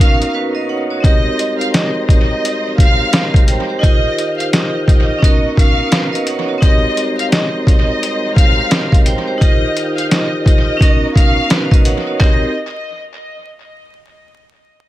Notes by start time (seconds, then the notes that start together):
Already playing: B2 A#3 C#4 D#4 F#4 A#4
0.00 F5, closed hi-hat
0.22 closed hi-hat
0.35 F#4 B4
0.55 A#4 D#5
0.69 C#5 F#5
0.90 F#4 C#5
1.00 G#2 G3 C4 D#4 A#4 D#5, kick
1.05 G4 A#4, closed hi-hat
1.39 closed hi-hat
1.59 F5, closed hi-hat
1.74 D#5, snare, closed hi-hat
2.09 D#5, kick, closed hi-hat
2.45 closed hi-hat
2.78 F5, kick, closed hi-hat
3.13 A#4 D#5, snare, closed hi-hat
3.34 kick, closed hi-hat
3.48 C5 G5, closed hi-hat
3.69 G4 C5
3.79 D#2 D#3 D#4 F4 G4 D#5, kick
3.84 G4 A#4, closed hi-hat
4.18 closed hi-hat
4.38 F5, closed hi-hat
4.53 D#5, snare, closed hi-hat
4.88 D#5, kick, closed hi-hat
5.18 B2 A#3 C#4 D#4 C#5
5.23 F#4 A#4, kick, closed hi-hat
5.57 F5, kick, closed hi-hat
5.92 F#4 B4, snare, closed hi-hat
6.13 A#4 D#5, closed hi-hat
6.27 C#5 F#5, closed hi-hat
6.48 F#4 C#5
6.58 C4 D#4 D#5, kick
6.62 G#2 G3 C4 G4 A#4, closed hi-hat
6.97 closed hi-hat
7.19 F5, closed hi-hat
7.31 D#5, snare, closed hi-hat
7.67 D#5, kick, closed hi-hat
8.03 closed hi-hat
8.35 F5, kick, closed hi-hat
8.71 A#4 D#5, snare, closed hi-hat
8.92 kick, closed hi-hat
9.06 C5 G5, closed hi-hat
9.27 G4 C5
9.38 D#2 D#3 D#4 F4 G4 D#5, kick, closed hi-hat
9.42 G4 A#4
9.77 closed hi-hat
9.97 F5, closed hi-hat
10.11 D#5, snare, closed hi-hat
10.44 D#5, kick, closed hi-hat
10.77 C#4 D#4, kick
10.81 B2 A#3 C#4 D#4 F#4 A#4, closed hi-hat
11.16 F5, kick, closed hi-hat
11.50 F#4 B4, snare, closed hi-hat
11.71 A#4 D#5, kick, closed hi-hat
11.85 C#5 F#5, closed hi-hat
12.07 F#4 C#5
12.20 G#3 C4 D#4 G4 A#4 C5 D#5, kick, clap